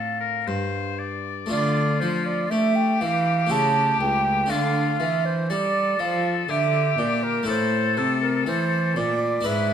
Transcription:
0.00 0.43 A2 medium
0.00 0.44 A2 soft
0.00 0.41 A3 soft
0.00 0.42 C4 soft
0.00 1.45 F4 soft
0.00 0.20 A4 medium
0.00 0.95 F5 medium
0.21 0.48 A#4 medium
0.47 1.46 G2 medium
0.47 1.46 G2 soft
0.47 1.01 C5 medium
0.99 1.50 D5 medium
1.46 2.03 D3 medium
1.46 2.50 A3 soft
1.46 3.45 D4 soft
1.46 3.46 F4 soft
1.50 1.97 D3 soft
1.50 2.47 F4 medium
1.50 2.02 D5 medium
2.00 2.50 F3 medium
2.00 2.47 F3 medium
2.00 2.27 C5 medium
2.26 2.52 D5 medium
2.50 3.02 A3 medium
2.50 2.97 A3 medium
2.50 4.52 G4 medium
2.50 2.77 E5 medium
2.76 3.02 G5 medium
3.01 3.50 E3 medium
3.01 3.47 E3 medium
3.01 3.52 F5 medium
3.47 3.99 C#3 medium
3.47 4.45 A3 soft
3.47 4.46 E4 soft
3.47 4.47 G4 soft
3.51 3.97 C#3 medium
3.51 4.00 A5 medium
4.00 4.49 C#2 medium
4.00 4.46 C#2 medium
4.00 4.51 G5 medium
4.46 4.99 D3 medium
4.46 4.96 A3 soft
4.46 7.43 D4 soft
4.46 7.43 A4 medium
4.46 5.01 F5 loud
4.51 4.96 D3 medium
4.51 5.33 F4 medium
5.00 5.52 E3 medium
5.00 5.46 E3 medium
5.00 5.27 E5 medium
5.25 5.51 C5 medium
5.50 5.96 G3 medium
5.50 5.99 G3 medium
5.50 6.51 A4 medium
5.50 6.02 D5 medium
5.99 6.45 F3 medium
5.99 6.48 F3 medium
5.99 6.27 F5 medium
6.49 6.94 D3 medium
6.49 6.98 D3 medium
6.49 7.47 G4 medium
6.49 7.00 E5 medium
6.98 7.44 A#2 medium
6.98 7.47 A#2 medium
6.98 7.25 D5 medium
7.23 7.48 A#4 medium
7.43 9.39 A3 medium
7.43 9.40 E4 medium
7.43 9.41 A4 medium
7.48 7.99 A2 medium
7.48 7.93 A2 medium
7.48 9.15 A4 medium
7.48 7.99 C5 loud
7.97 8.43 C3 medium
7.97 8.49 C3 medium
7.97 8.21 A4 medium
8.22 8.46 A#4 medium
8.46 8.92 E3 medium
8.46 8.98 E3 medium
8.46 8.99 C5 medium
8.96 9.45 A#2 medium
8.96 9.42 A#2 medium
8.96 9.48 D5 medium
9.41 9.73 D4 medium
9.41 9.73 E4 medium
9.41 9.73 B4 medium
9.45 9.73 G#2 medium
9.45 9.73 B4 medium
9.45 9.73 E5 medium

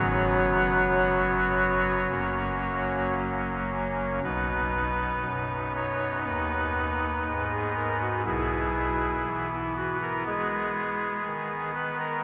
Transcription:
0.00 2.07 F#1 medium
0.00 2.07 F#2 medium
0.00 2.07 F#3 medium
0.00 2.07 B3 medium
0.00 3.14 F#4 medium
0.00 3.14 C#5 loud
2.10 4.19 F#1 medium
2.10 4.20 F#2 medium
2.10 4.20 F#3 medium
2.10 4.20 A#3 soft
2.10 4.19 C#4 soft
4.24 5.22 B1 medium
4.24 5.22 B2 medium
4.24 8.22 B3 soft
4.24 8.22 D#4 soft
4.24 5.72 B4 medium
5.25 6.23 F#2 medium
5.75 6.18 C#5 medium
6.25 7.23 D#2 medium
6.25 7.47 B4 loud
7.26 8.23 G#2 medium
7.51 7.72 G#4 medium
7.75 7.97 A#4 medium
8.01 8.22 F#4 medium
8.26 9.23 B1 medium
8.26 9.24 B2 medium
8.26 12.21 B3 soft
8.26 9.50 E4 soft
8.26 9.48 G#4 loud
9.27 10.23 E3 medium
9.52 9.73 E4 medium
9.76 9.98 F#4 medium
10.02 10.23 A#4 loud
10.27 11.23 G#3 medium
10.27 11.71 G#4 loud
11.26 12.22 D#3 medium
11.75 11.96 B4 loud
11.99 12.21 A#4 loud

